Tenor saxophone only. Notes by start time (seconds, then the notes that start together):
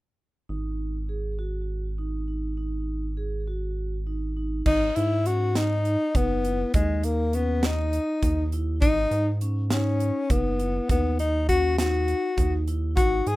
4.67 D#4
4.96 E4
5.27 F#4
5.56 D#4
6.16 B3
6.75 G#3
7.05 A#3
7.35 B3
7.65 D#4
8.81 D#4
9.72 C#4
10.31 B3
10.90 B3
11.19 D#4
11.49 F#4
11.78 F#4
12.96 F#4
13.27 G#4